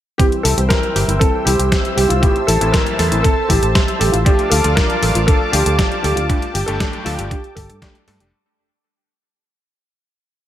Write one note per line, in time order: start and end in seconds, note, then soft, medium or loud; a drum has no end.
0.18 0.55 E3 medium
0.18 0.55 G3 medium
0.18 0.55 C4 medium
0.18 0.24 C4 medium
0.18 0.55 E4 medium
0.18 0.24 G4 loud
0.18 4.22 C5 medium
0.18 4.22 E5 medium
0.18 2.21 G5 medium
0.18 4.22 E6 medium
0.18 kick loud
0.18 closed hi-hat medium
0.32 closed hi-hat soft
0.43 0.55 C2 medium
0.43 0.50 E4 loud
0.43 0.49 A4 medium
0.43 open hi-hat loud
0.58 0.68 C2 medium
0.58 1.05 E3 medium
0.58 1.05 G3 medium
0.58 1.05 C4 medium
0.58 1.05 E4 medium
0.58 0.70 G4 medium
0.58 closed hi-hat soft
0.69 1.22 A#4 loud
0.69 0.82 C5 medium
0.69 kick loud
0.69 snare loud
0.69 closed hi-hat medium
0.83 closed hi-hat soft
0.96 1.06 G1 medium
0.96 1.08 G4 loud
0.96 open hi-hat loud
1.08 1.19 G1 medium
1.08 2.20 E3 medium
1.08 2.20 G3 medium
1.08 2.20 C4 medium
1.08 2.20 E4 medium
1.08 1.17 E4 medium
1.08 closed hi-hat medium
1.19 1.26 C4 medium
1.19 1.47 A4 loud
1.19 kick loud
1.19 closed hi-hat medium
1.45 1.57 C2 medium
1.45 1.52 E4 loud
1.45 1.95 G4 loud
1.45 open hi-hat loud
1.59 1.69 C2 medium
1.59 1.71 G4 medium
1.59 closed hi-hat medium
1.72 1.84 C5 medium
1.72 kick loud
1.72 snare loud
1.72 closed hi-hat medium
1.85 closed hi-hat soft
1.96 2.08 C2 loud
1.96 2.09 G4 medium
1.96 2.10 G4 loud
1.96 open hi-hat loud
2.09 2.20 C2 medium
2.09 2.18 E4 medium
2.09 2.23 F4 medium
2.09 closed hi-hat medium
2.22 2.36 A2 medium
2.22 2.36 E3 medium
2.22 2.36 A3 medium
2.22 2.36 C4 medium
2.22 2.28 C4 medium
2.22 2.36 E4 medium
2.22 2.48 G4 loud
2.22 4.24 A5 medium
2.22 kick loud
2.22 closed hi-hat medium
2.36 closed hi-hat soft
2.47 2.58 A1 loud
2.47 2.53 E4 medium
2.47 2.74 A4 loud
2.47 open hi-hat loud
2.61 2.71 A1 medium
2.61 3.09 A2 medium
2.61 3.09 E3 medium
2.61 3.09 C4 medium
2.61 3.09 E4 loud
2.61 2.73 A4 medium
2.61 closed hi-hat medium
2.72 3.25 A#4 loud
2.72 2.86 C5 medium
2.72 kick loud
2.72 snare loud
2.72 closed hi-hat medium
2.86 closed hi-hat soft
2.99 3.09 E2 medium
2.99 3.11 A4 loud
2.99 snare soft
2.99 open hi-hat loud
3.12 3.22 A1 medium
3.12 3.25 A2 medium
3.12 3.25 E3 medium
3.12 3.25 A3 medium
3.12 3.25 C4 medium
3.12 3.20 E4 medium
3.12 3.25 E4 medium
3.12 closed hi-hat medium
3.23 3.29 C4 medium
3.23 3.47 A4 loud
3.23 kick loud
3.23 closed hi-hat medium
3.48 3.60 A1 medium
3.48 3.55 E4 loud
3.48 3.98 G4 medium
3.48 kick medium
3.48 open hi-hat loud
3.63 3.73 A1 medium
3.63 3.75 A4 medium
3.63 closed hi-hat medium
3.75 3.87 C5 medium
3.75 kick loud
3.75 snare loud
3.75 closed hi-hat medium
3.88 closed hi-hat soft
3.99 4.11 A1 loud
3.99 4.13 G4 medium
3.99 4.13 A4 medium
3.99 open hi-hat loud
4.12 4.24 A1 medium
4.12 4.22 E4 medium
4.12 4.17 F4 medium
4.12 closed hi-hat medium
4.25 4.61 F3 medium
4.25 4.61 A3 medium
4.25 4.61 D4 medium
4.25 4.31 D4 medium
4.25 4.61 F4 medium
4.25 4.52 G4 loud
4.25 8.29 D5 medium
4.25 6.28 F5 medium
4.25 8.29 A5 medium
4.25 8.29 D6 medium
4.25 kick loud
4.25 closed hi-hat medium
4.39 closed hi-hat soft
4.50 4.62 D2 loud
4.50 4.57 F4 loud
4.50 4.74 A4 medium
4.50 open hi-hat loud
4.64 4.75 D2 medium
4.64 5.12 F3 medium
4.64 5.12 D4 medium
4.64 5.12 F4 loud
4.64 4.77 A4 medium
4.64 closed hi-hat medium
4.75 5.29 A#4 loud
4.75 4.89 D5 medium
4.75 kick loud
4.75 snare loud
4.75 closed hi-hat medium
4.90 closed hi-hat soft
5.03 5.13 A1 medium
5.03 5.15 A4 loud
5.03 open hi-hat loud
5.15 5.25 A1 medium
5.15 6.27 F3 medium
5.15 6.27 A3 medium
5.15 6.27 D4 medium
5.15 6.27 F4 medium
5.15 5.24 F4 medium
5.15 closed hi-hat medium
5.27 5.33 D4 medium
5.27 5.54 A4 loud
5.27 kick loud
5.27 closed hi-hat medium
5.52 5.64 D2 medium
5.52 5.58 F4 loud
5.52 6.01 G4 medium
5.52 open hi-hat loud
5.66 5.76 D2 medium
5.66 5.78 A4 medium
5.66 closed hi-hat medium
5.79 5.91 D5 medium
5.79 kick loud
5.79 snare loud
5.79 closed hi-hat medium
5.92 closed hi-hat soft
6.03 6.14 D2 medium
6.03 6.17 G4 medium
6.03 6.16 A4 loud
6.03 open hi-hat loud
6.16 6.27 D2 medium
6.16 6.56 F4 medium
6.16 6.25 F4 medium
6.16 closed hi-hat medium
6.29 6.43 G2 medium
6.29 6.43 G3 medium
6.29 6.43 A3 medium
6.29 6.43 D4 medium
6.29 6.35 D4 medium
6.29 6.43 G4 medium
6.29 8.31 G5 medium
6.29 kick loud
6.29 closed hi-hat medium
6.42 closed hi-hat soft
6.54 6.65 G1 loud
6.54 6.66 G4 medium
6.54 6.60 G4 loud
6.54 open hi-hat medium
6.66 6.78 G1 medium
6.66 7.16 G2 medium
6.66 7.16 G3 medium
6.66 7.16 A3 medium
6.66 7.16 D4 medium
6.66 7.16 G4 loud
6.66 7.03 A4 loud
6.66 6.80 A4 medium
6.66 closed hi-hat soft
6.80 6.93 D5 medium
6.80 kick loud
6.80 snare loud
6.80 closed hi-hat medium
6.93 closed hi-hat soft
7.04 7.16 D2 medium
7.04 7.31 F4 medium
7.04 7.18 A4 loud
7.04 snare soft
7.04 open hi-hat loud
7.19 7.29 G1 medium
7.19 7.32 G2 medium
7.19 7.32 G3 medium
7.19 7.32 A3 medium
7.19 7.32 D4 medium
7.19 7.32 G4 medium
7.19 7.27 G4 medium
7.19 closed hi-hat medium
7.30 7.36 D4 medium
7.30 7.57 G4 medium
7.30 kick loud
7.30 closed hi-hat medium
7.44 closed hi-hat soft
7.55 7.67 G1 loud
7.55 7.62 G4 loud
7.55 8.03 A4 medium
7.55 kick medium
7.55 open hi-hat loud
7.69 7.80 G2 medium
7.69 7.82 A4 medium
7.69 closed hi-hat soft
7.82 7.95 G2 loud
7.82 7.95 G3 medium
7.82 7.95 A3 medium
7.82 7.95 D4 medium
7.82 7.95 G4 loud
7.82 7.94 D5 medium
7.82 kick loud
7.82 snare loud
7.82 closed hi-hat medium
7.95 closed hi-hat soft
8.08 8.30 G2 medium
8.08 8.18 G2 loud
8.08 8.30 G3 medium
8.08 8.30 A3 medium
8.08 8.30 D4 medium
8.08 8.30 A4 loud
8.08 8.20 A4 loud
8.08 open hi-hat loud
8.20 8.31 F1 medium
8.20 8.29 G4 medium
8.20 closed hi-hat soft